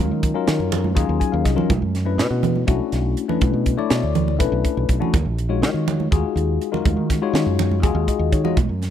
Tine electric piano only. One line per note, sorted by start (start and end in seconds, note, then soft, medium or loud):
0.00 0.31 F#3 medium
0.00 0.31 C#4 medium
0.00 0.31 D#4 medium
0.00 0.32 F4 medium
0.00 0.32 A#4 medium
0.34 0.92 F#3 medium
0.34 0.92 C#4 medium
0.34 0.92 D#4 medium
0.34 0.92 F4 medium
0.34 0.92 A#4 medium
0.95 1.53 F#3 medium
0.95 1.53 C#4 medium
0.95 1.53 D#4 medium
0.95 1.53 F4 medium
0.95 1.53 G#4 medium
1.20 1.32 G#5 medium
1.32 1.44 F5 medium
1.45 1.68 D#5 medium
1.55 1.69 F#3 medium
1.55 1.69 C#4 medium
1.55 1.69 D#4 medium
1.55 1.69 F4 medium
1.55 1.69 A#4 medium
2.05 2.63 A3 medium
2.05 2.63 C#4 medium
2.05 2.63 D4 medium
2.05 2.63 E4 medium
2.05 2.64 B4 medium
2.67 3.24 A3 medium
2.67 3.25 C#4 medium
2.67 3.25 D4 medium
2.67 3.25 E4 medium
2.67 3.25 F#4 medium
3.28 3.74 A3 medium
3.28 3.75 C#4 medium
3.28 3.75 D4 medium
3.28 3.75 E4 medium
3.28 3.75 B4 medium
3.77 4.35 A3 medium
3.77 4.35 D4 medium
3.77 4.35 E4 medium
3.77 4.35 C#5 medium
3.77 4.36 D5 medium
4.39 4.96 A3 medium
4.39 4.97 C#4 medium
4.39 4.97 D4 medium
4.39 4.97 E4 medium
4.39 4.97 B4 medium
5.00 5.13 A3 medium
5.00 5.13 C#4 medium
5.00 5.13 D4 medium
5.00 5.13 E4 medium
5.00 5.13 F#4 medium
5.49 6.07 G#3 medium
5.49 6.07 D#4 medium
5.49 6.07 F4 medium
5.49 6.07 F#4 medium
5.49 6.07 C#5 medium
6.11 6.68 G#3 medium
6.11 6.69 D#4 medium
6.11 6.69 F4 medium
6.11 6.69 F#4 medium
6.11 6.69 G#4 medium
6.72 7.18 G#3 medium
6.72 7.18 D#4 medium
6.72 7.18 F4 medium
6.72 7.18 F#4 medium
6.72 7.19 A#4 medium
7.22 7.79 G#3 medium
7.22 7.79 D#4 medium
7.22 7.79 F4 medium
7.22 7.79 F#4 medium
7.22 7.79 C#5 medium
7.83 8.40 G#3 medium
7.83 8.40 D#4 medium
7.83 8.40 F4 medium
7.83 8.40 F#4 medium
7.83 8.40 G#4 medium
8.08 8.31 D#5 medium
8.32 8.55 C#5 medium
8.44 8.56 G#3 medium
8.44 8.57 D#4 medium
8.44 8.57 F4 medium
8.44 8.57 F#4 medium
8.44 8.57 D#5 medium